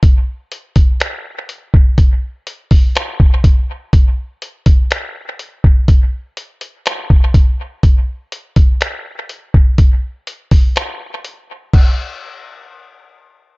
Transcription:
0.03 kick, closed hi-hat
0.52 closed hi-hat
0.76 kick, closed hi-hat
1.00 finger snap, closed hi-hat
1.49 closed hi-hat
1.74 kick
1.98 kick, closed hi-hat
2.47 closed hi-hat
2.71 kick, open hi-hat
2.95 finger snap, closed hi-hat
3.20 kick
3.44 kick, closed hi-hat
3.93 kick, closed hi-hat
4.42 closed hi-hat
4.66 kick, closed hi-hat
4.91 finger snap, closed hi-hat
5.39 closed hi-hat
5.64 kick
5.88 kick, closed hi-hat
6.37 closed hi-hat
6.61 closed hi-hat
6.86 finger snap, closed hi-hat
7.10 kick
7.34 kick, closed hi-hat
7.83 kick, closed hi-hat
8.32 closed hi-hat
8.56 kick, closed hi-hat
8.81 finger snap, closed hi-hat
9.29 closed hi-hat
9.54 kick
9.78 kick, closed hi-hat
10.27 closed hi-hat
10.51 kick, open hi-hat
10.76 finger snap, closed hi-hat
11.25 closed hi-hat
11.73 kick, crash

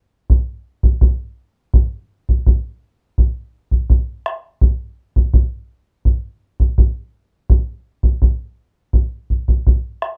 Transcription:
0.30 bombo low
0.83 bombo low
1.01 bombo low
1.74 bombo low
2.29 bombo low
2.46 bombo low
3.18 bombo low
3.71 bombo low
3.90 bombo low
4.26 bombo rim
4.61 bombo low
5.16 bombo low
5.34 bombo low
6.05 bombo low
6.60 bombo low
6.78 bombo low
7.50 bombo low
8.03 bombo low
8.22 bombo low
8.93 bombo low
9.30 bombo low
9.48 bombo low
9.67 bombo low
10.02 bombo rim

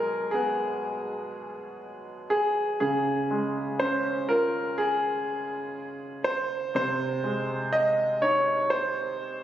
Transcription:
Already playing: B2 F#3 G#3 A#4
0.31 B3 G#4
2.30 G#4
2.80 C#3 G#4
3.31 G#3
3.80 C#4 C5
4.29 F4 A#4
4.78 G#4
6.24 C5
6.75 C3 C5
7.24 G#3
7.73 D#5
8.21 D#4 C#5
8.70 C5

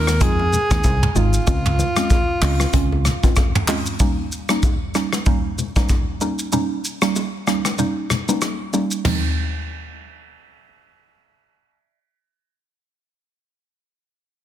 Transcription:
Already playing: D#2 G#3 C4 D#4 F4 A#4
0.07 cross-stick, low bongo, shaker
0.21 F2 G#3 C4 D#4 F4 G#4, kick, hi-hat pedal, low conga, shaker
0.39 high bongo
0.53 low conga, shaker
0.71 D#2 G#3 C4 D#4 F4, kick, cross-stick, low bongo, shaker
0.84 C2, kick, high bongo, shaker
1.03 mid tom
1.10 G#4
1.15 G#1 G#3 C4 D#4 F4, high bongo, shaker
1.34 shaker
1.47 C#2 G#3 C4 C#4 F4, kick, low conga, shaker
1.66 mid tom
1.79 low bongo, shaker
1.96 G#3 C4 C#4 F4, cross-stick, shaker
2.10 kick, high bongo, shaker
2.42 C#2 G#3 C4 C#4 F4, cross-stick, clap, open hi-hat, shaker
2.60 cross-stick, low bongo, shaker
2.73 C#2 G#3 C4 C#4 F4, kick, hi-hat pedal, low conga, shaker
2.92 high bongo
3.05 cross-stick, low conga, shaker
3.23 G#3 C4 C#4 F4, kick, low bongo, shaker
3.36 kick, cross-stick, high bongo, shaker
3.55 mid tom
3.68 G#3 C4 C#4 F4, clap, open hi-hat, high bongo, shaker
3.86 shaker
4.00 G3 A#3 C#4 D#4, kick, low conga, shaker
4.32 shaker
4.49 G3 A#3 C#4 D#4, cross-stick, shaker
4.63 kick, high bongo, shaker
4.95 G3 A#3 C#4 D#4, cross-stick, shaker
5.13 cross-stick, low bongo, shaker
5.26 G3 A#3 C#4 D#4, kick, low conga, shaker
5.58 low conga, shaker
5.76 G3 A#3 C#4 D#4, kick, cross-stick, low bongo, shaker
5.89 kick, high bongo, shaker
6.21 G3 A#3 C#4 D#4, high bongo, shaker
6.39 shaker
6.52 G3 A#3 C#4 D#4, low conga, shaker
6.85 shaker
7.02 G3 A#3 C#4 D#4, cross-stick, shaker
7.16 high bongo, shaker
7.47 G3 A#3 C#4 D#4, cross-stick, shaker
7.65 cross-stick, low bongo, shaker
7.78 G3 A#3 C#4 D#4, low conga, shaker
8.10 cross-stick, low conga, shaker
8.29 G3 A#3 C#4 D#4, low bongo, shaker
8.42 cross-stick, high bongo, shaker
8.73 G3 A#3 C#4 D#4, high bongo, shaker
8.91 shaker
9.05 F3 G#3 C4 D#4, snare, floor tom, crash, low conga

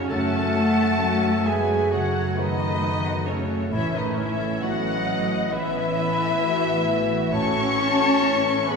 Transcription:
Already playing: C#3 C#4 D#4 F#4 C#5 F#5
0.10 F#2 F#3 A3 C#4 A4 F#5 A5
0.57 F#3 F#4
1.01 F#3 A3 C#4 F#4 C#5
1.24 F#5
1.46 G#3 B3 G#4 C#5 E5 G#5
1.71 F#4
1.92 C#3 F#3 A3 F#4 C#5 F#5
2.17 A3
2.37 D#3 D#4 F#4 B4 D#5
2.61 A4
2.83 A3 B3 C#5
3.05 F#5
3.26 C#3 A3 C#4 A4 C#5
3.50 F#4
3.71 A1 A2 E3 A3 C#4 E4 C#5 E5
3.93 D#3 A3 D#4 B4 D#5
4.16 E3 E4 C#5 E5
4.39 A4
4.62 E3 F#3 B3 C#4 E4 F#4 B4 D#5 F#5
5.07 B4 D#5
5.29 E4
5.51 E3 B3 E4 B4 E5
5.74 A3
5.96 B3 E4
6.18 A4
6.40 A3 B3 F#4 B4
6.87 F#4 B4
7.10 E4
7.32 A1 A2 A3 C#4 E4 C#5 A5 C#6
7.57 A3
7.78 C#4 E4
8.01 A4
8.22 A3 E4 B4
8.67 B3 G#4 B4 G#5 B5

